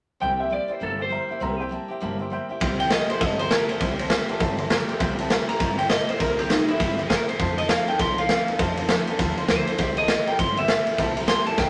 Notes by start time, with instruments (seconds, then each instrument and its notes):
0.20 upright bass C2, steel-string acoustic guitar C3 G3 A#3 E4 G4, upright piano C5 E5 G5, clean electric guitar G5
0.39 steel-string acoustic guitar A#3 E4 G4, upright piano C5 E5 G5, clean electric guitar E5
0.50 steel-string acoustic guitar G3 A#3 E4 G4, upright piano C5 E5 G5, clean electric guitar D5
0.68 steel-string acoustic guitar A#3 E4 G4, upright piano C5 E5 G5, muted upright bass stroke
0.72 clean electric guitar C5
0.80 upright bass G1, steel-string acoustic guitar C3 G3 A#3 E4 G4, clean electric guitar A4, upright piano C5 E5 A#5
0.98 steel-string acoustic guitar A#3 E4 G4, upright piano C5 E5 G5, clean electric guitar C5
1.09 steel-string acoustic guitar G3 A#3 E4 G4, upright piano C5 E5 A#5
1.29 steel-string acoustic guitar A#3 E4 G4, upright piano C5 E5 G5, muted upright bass stroke
1.40 upright bass C2, steel-string acoustic guitar C3 G3 A#3 E4 G4, upright piano C5 E5 A#5
1.58 steel-string acoustic guitar A#3 E4 G4, upright piano C5 E5 G5
1.69 steel-string acoustic guitar G3 A#3 E4 G4, upright piano C5 E5 A5
1.88 steel-string acoustic guitar A#3 E4 G4, upright piano C5 E5 G5, muted upright bass stroke
2.00 upright bass G1, steel-string acoustic guitar C3 G3 A#3 E4 G4, upright piano C5 E5 A5
2.19 steel-string acoustic guitar A#3 E4 G4, upright piano C5 E5 G5
2.30 steel-string acoustic guitar G3 A#3 E4 G4, upright piano C5 E5 G5
2.49 steel-string acoustic guitar A#3 E4 G4, upright piano C5 E5 G5, muted upright bass stroke
2.60 upright bass C2, steel-string acoustic guitar C3 G3 A#3 E4 G4, upright piano C5 E5 G5, kick, ride
2.78 steel-string acoustic guitar A#3 E4 G4, upright piano E5, clean electric guitar G5, ride
2.90 steel-string acoustic guitar C3 G3 A#3 E4 G4, upright piano C5, clean electric guitar D#5, snare, ride
3.07 steel-string acoustic guitar A#3 E4 G4, upright piano C5 E5 G5, clean electric guitar C5, muted upright bass stroke, ride
3.19 upright bass G1, steel-string acoustic guitar G3 A#3 E4 G4, upright piano C5 E5 A5, clean electric guitar D#5, kick, ride
3.38 steel-string acoustic guitar A#3 E4 G4, upright piano C5 E5 A#5, clean electric guitar C5, ride
3.50 steel-string acoustic guitar C3 G3 A#3 E4 G4, clean electric guitar A#4, upright piano C5 E5 A5, snare, ride
3.69 steel-string acoustic guitar A#3 E4 G4, clean electric guitar C5, upright piano C5 E5 A5, muted upright bass stroke, ride
3.80 upright bass C2, steel-string acoustic guitar C3 G3 A#3 E4 G4, upright piano C5 E5 G5, kick, ride
3.99 steel-string acoustic guitar A#3 E4 G4, upright piano C5 E5 A5, ride
4.10 steel-string acoustic guitar C3 G3 A#3 E4 G4, upright piano E5 G5, snare, ride
4.28 steel-string acoustic guitar A#3 E4 G4, upright piano C5 E5 A5, muted upright bass stroke, ride
4.40 upright bass G1, steel-string acoustic guitar G3 A#3 E4 G4, upright piano C5 E5 A5, kick, ride
4.58 steel-string acoustic guitar A#3 E4 G4, upright piano C5 E5 A5, ride
4.70 steel-string acoustic guitar C3 G3 A#3 E4 G4, upright piano C5 E5, snare, ride
4.88 steel-string acoustic guitar E4 G4, upright piano C5 E5 G5, muted upright bass stroke, ride
4.92 steel-string acoustic guitar A#3
4.99 upright bass C2, steel-string acoustic guitar C3 G3 A#3 E4 G4, upright piano C5 E5 G5, kick, ride
5.17 steel-string acoustic guitar E4 G4, upright piano C5 E5 A5, ride
5.22 steel-string acoustic guitar A#3
5.29 steel-string acoustic guitar C3 G3 A#3 E4 G4, upright piano C5 E5, snare, ride
5.48 steel-string acoustic guitar E4 G4, upright piano C5 E5 A#5, clean electric guitar A#5, muted upright bass stroke, ride
5.52 steel-string acoustic guitar A#3
5.60 upright bass G1, steel-string acoustic guitar G3 A#3 E4 G4, upright piano C5 E5 A#5, kick, snare, ride
5.78 steel-string acoustic guitar E4 G4, upright piano C5 E5 G5, clean electric guitar G5, ride
5.82 steel-string acoustic guitar A#3
5.89 steel-string acoustic guitar C3 G3 A#3 E4 G4, upright piano C5 E5 A5, clean electric guitar D#5, snare, ride
6.07 steel-string acoustic guitar A#3 E4 G4, upright piano C5 E5 G5, clean electric guitar C5, muted upright bass stroke, ride
6.19 upright bass C2, steel-string acoustic guitar C3 G3 A#3 E4 G4, clean electric guitar A#4, upright piano C5 E5 A#5, kick, ride
6.38 steel-string acoustic guitar A#3 E4 G4, clean electric guitar G4, upright piano C5 E5 A#5, ride
6.49 steel-string acoustic guitar C3 G3 A#3 E4 G4, clean electric guitar D#4, upright piano E5 G5, snare, ride
6.68 steel-string acoustic guitar A#3 E4 G4, clean electric guitar E4, upright piano C5 E5 G5, muted upright bass stroke, ride
6.79 upright bass G1, steel-string acoustic guitar G3 A#3 E4 G4, upright piano C5 E5 G5, kick, snare, ride
6.98 steel-string acoustic guitar A#3 E4 G4, upright piano C5 E5 G5, ride
7.09 steel-string acoustic guitar C3 G3 A#3 E4 G4, clean electric guitar A#4, upright piano C5 E5 A#5, kick, snare, ride
7.27 steel-string acoustic guitar A#3 E4 G4, upright piano C5 G5, clean electric guitar C5, muted upright bass stroke, ride
7.39 upright bass F2, steel-string acoustic guitar F3 C4 D#4 A4, upright piano C5 F5 A5, kick, ride
7.57 steel-string acoustic guitar C4 D#4 A4, upright piano C5 F5 A5, clean electric guitar D#5, ride
7.68 steel-string acoustic guitar F3 C4 D#4 A4, upright piano C5 A5, clean electric guitar F5, snare, ride
7.87 steel-string acoustic guitar C4 D#4 A4, upright piano C5 F5 A5, clean electric guitar G5, muted upright bass stroke, ride
7.98 upright bass C2, steel-string acoustic guitar F3 C4 D#4 A4, upright piano C5 F5 A5, clean electric guitar C6, kick, snare, ride
8.17 steel-string acoustic guitar C4 D#4 A4, upright piano C5 F5 G5, clean electric guitar F5, ride
8.29 steel-string acoustic guitar F3 C4 D#4 A4, upright piano C5, snare, ride
8.47 steel-string acoustic guitar C4 D#4 A4, upright piano C5 F5 A5, muted upright bass stroke, ride
8.58 upright bass F2, steel-string acoustic guitar F3 C4 D#4 A4, upright piano C5 F5 A5, kick, ride
8.77 steel-string acoustic guitar C4 D#4 A4, upright piano C5 F5 A5, ride
8.88 steel-string acoustic guitar F3 C4 D#4 A4, upright piano C5 F5 G5, snare, ride
9.07 steel-string acoustic guitar C4 D#4 A4, upright piano C5 F5 A5, muted upright bass stroke, ride
9.18 upright bass D#2, steel-string acoustic guitar F3 C4 D#4, upright piano C5 F5 A5, kick, snare, ride
9.22 steel-string acoustic guitar A4
9.37 steel-string acoustic guitar C4 D#4 A4, upright piano C5 F5 C6, muted upright bass stroke, ride
9.48 upright bass D2, steel-string acoustic guitar F3 C4 D#4 A4, clean electric guitar C5, snare, ride
9.67 steel-string acoustic guitar C4 D#4 A4, upright piano C5 F5 G5, clean electric guitar C5, muted upright bass stroke, ride
9.78 upright bass C2, steel-string acoustic guitar C3 G3 A#3 E4 G4, upright piano C5 E5 G5, kick, ride
9.97 steel-string acoustic guitar A#3 E4 G4, upright piano C5 E5 A5, clean electric guitar D#5, ride
10.08 steel-string acoustic guitar C3 G3 A#3 E4 G4, clean electric guitar D#5, upright piano G5, snare, ride
10.26 steel-string acoustic guitar A#3 E4 G4, upright piano C5 E5 A#5, clean electric guitar G5, muted upright bass stroke, ride
10.39 upright bass G1, steel-string acoustic guitar G3 A#3 E4 G4, upright piano C5 E5 G5, clean electric guitar C6, kick, ride
10.57 steel-string acoustic guitar A#3 E4 G4, upright piano C5 E5 G5, clean electric guitar E5, ride
10.68 steel-string acoustic guitar C3 G3 A#3 E4 G4, upright piano C5 G5, snare, ride
10.87 steel-string acoustic guitar A#3 E4 G4, upright piano C5 E5 G5, muted upright bass stroke, ride
10.98 upright bass C2, steel-string acoustic guitar C3 G3 A#3 E4 G4, upright piano C5 E5 A5, kick, ride
11.16 steel-string acoustic guitar A#3 E4 G4, upright piano C5 A#5, ride
11.28 steel-string acoustic guitar C3 G3 A#3 E4 G4, upright piano E5 A5, clean electric guitar C6, snare, ride
11.46 steel-string acoustic guitar A#3 E4 G4, upright piano C5 E5 G5, clean electric guitar A5, muted upright bass stroke, ride
11.57 upright bass G1, steel-string acoustic guitar G3 A#3 E4 G4, upright piano C5 E5 A#5, clean electric guitar G5, kick, snare